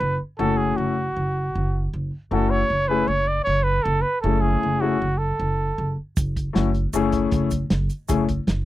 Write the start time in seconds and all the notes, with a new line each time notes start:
Already playing: B4
0.00 F#1
0.38 F#1 A3 C#4 E4 F#4 A4
0.57 G#4
0.77 F#1 F#4
1.16 F#1
1.55 F#1
1.94 F#1
2.31 F#1 A3 C#4 E4 F#4 A4
2.51 C#5
2.70 F#1
2.88 A3 C#4 E4 G#4 B4
3.08 F#1 C#5
3.28 D5
3.44 F#1 C#5
3.63 B4
3.83 F#1 A4
4.02 B4
4.21 F#1 A3 C#4 E4 A4
4.26 G#4
4.41 G#4
4.63 F#1
4.81 A3 C#4 E4 F#4 G#4
5.02 F#1
5.18 A4
5.40 F#1
5.78 F#1
6.17 F#1, kick, closed hi-hat, shaker
6.36 kick, closed hi-hat
6.53 F#1 A3 C#4 E4 F#4, snare, closed hi-hat
6.75 closed hi-hat
6.93 F#1 A3 C#4 E4 G#4, closed hi-hat, shaker
7.12 kick, closed hi-hat
7.31 F#1, kick, closed hi-hat
7.51 kick, closed hi-hat, shaker
7.70 F#1, snare, closed hi-hat
7.90 closed hi-hat, shaker
8.08 F#1 A3 C#4 E4 G#4, kick, closed hi-hat, shaker
8.29 kick, closed hi-hat
8.47 F#1, snare, closed hi-hat